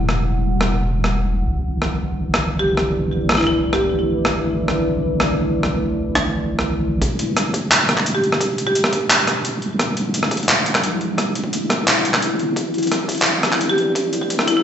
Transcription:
Already playing: wobble bass E1, ambient pad G3 E4 F#5
0.09 cross-stick
0.61 cross-stick
1.04 cross-stick
1.47 wobble bass A1, ambient pad A3 E4 B4 D5
1.82 cross-stick
2.34 cross-stick
2.59 marimba G4
2.77 cross-stick
3.29 cross-stick
3.32 cross-stick
3.35 marimba E4, cross-stick
3.38 cross-stick
3.41 cross-stick
3.44 marimba E4, cross-stick
3.73 marimba G4, cross-stick
4.25 cross-stick
4.68 cross-stick
5.20 cross-stick
5.63 cross-stick
6.15 cross-stick
6.59 cross-stick
7.02 wobble bass E1, ambient pad G3 E4 F#5, kick, closed hi-hat
7.19 closed hi-hat
7.37 cross-stick, closed hi-hat
7.54 kick, closed hi-hat
7.71 clap, closed hi-hat
7.89 cross-stick, closed hi-hat
7.97 clap
8.06 closed hi-hat
8.15 marimba G4
8.24 closed hi-hat
8.32 cross-stick
8.41 wobble bass E1, kick, closed hi-hat
8.58 closed hi-hat
8.67 marimba G4, kick
8.75 closed hi-hat
8.84 cross-stick
8.93 kick, closed hi-hat
9.10 clap, closed hi-hat
9.27 cross-stick, closed hi-hat
9.45 closed hi-hat
9.62 closed hi-hat
9.79 wobble bass E1, kick, cross-stick, closed hi-hat
9.97 closed hi-hat
10.14 closed hi-hat
10.23 cross-stick
10.31 kick, closed hi-hat
10.37 closed hi-hat
10.43 closed hi-hat
10.49 clap
10.66 closed hi-hat
10.75 cross-stick, clap
10.84 wobble bass B1, closed hi-hat
11.01 closed hi-hat
11.18 wobble bass E1, kick, cross-stick, closed hi-hat
11.35 closed hi-hat
11.44 kick
11.53 closed hi-hat
11.70 kick, cross-stick, closed hi-hat
11.88 clap, closed hi-hat
12.05 wobble bass E1, closed hi-hat
12.14 cross-stick, clap
12.22 closed hi-hat
12.39 wobble bass G1, closed hi-hat
12.56 wobble bass A1, ambient pad A3 B4 D5, kick, closed hi-hat
12.74 closed hi-hat
12.78 closed hi-hat
12.83 closed hi-hat
12.87 closed hi-hat
12.92 cross-stick, closed hi-hat
13.08 kick, closed hi-hat
13.12 closed hi-hat
13.15 closed hi-hat
13.18 closed hi-hat
13.21 clap, closed hi-hat
13.23 closed hi-hat
13.26 closed hi-hat
13.43 cross-stick, closed hi-hat
13.52 clap
13.61 closed hi-hat
13.70 marimba G4
13.78 closed hi-hat
13.95 wobble bass A1, kick, closed hi-hat
14.13 closed hi-hat
14.21 kick
14.30 closed hi-hat
14.39 cross-stick
14.47 marimba E4, kick, closed hi-hat
14.57 marimba E4

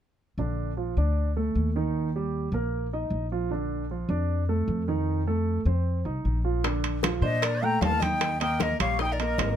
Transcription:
0.38 upright bass A#1, grand piano D3 D4
0.77 grand piano F3 F4
0.97 upright bass D2, grand piano D4 D5
1.37 grand piano A3 A4
1.55 upright bass D#2
1.76 grand piano D#3 D#4
2.16 grand piano G3 G4
2.52 upright bass A#1, grand piano A#3 A#4
2.93 grand piano D#4 D#5
3.10 upright bass A#1
3.32 grand piano F3 F4
3.51 grand piano D3 D4
3.91 grand piano F3 F4
4.09 upright bass F2, grand piano D4 D5
4.49 grand piano A3 A4
4.68 upright bass F2
4.88 grand piano D#3 D#4
5.27 grand piano A3 A4
5.65 upright bass F2, grand piano C4 C5
6.05 upright bass C2, grand piano D#4 D#5
6.25 upright bass A#1
6.44 grand piano F3 F4
6.64 grand piano D3 D4, high bongo, high conga, high timbale
6.84 high conga, high timbale
7.03 grand piano F3 F4, high bongo, high conga, high timbale, low timbale
7.22 upright bass A#2, grand piano D4 D5, mandolin C5, flute D#5, high bongo, high conga
7.42 mandolin A#4, flute D5, high bongo, high conga, high timbale
7.62 grand piano A3 A4, mandolin G5, flute A#5, high conga
7.81 upright bass D#2, mandolin F5, flute A5, high bongo, low bongo, high conga, high timbale, low timbale
8.00 grand piano D#4 D#5, mandolin D#5, flute G5, high bongo, high conga, high timbale
8.21 high bongo, high conga, high timbale
8.40 grand piano A#3 A#4, mandolin D#5, flute G5, high conga, high timbale
8.60 mandolin A#4, flute D#5, high bongo, high conga, high timbale, low timbale
8.80 upright bass A#1, grand piano G3 G4, mandolin C#5, flute F5, high bongo, high conga, high timbale
8.99 grand piano D#4 D#5, mandolin D#5, flute G5, high bongo, high conga
9.12 mandolin A#4, flute D5
9.19 grand piano A#3 A#4, mandolin A#4, flute D#5, high conga, high timbale
9.38 upright bass G#1, high bongo, low bongo, high conga, high timbale, low timbale

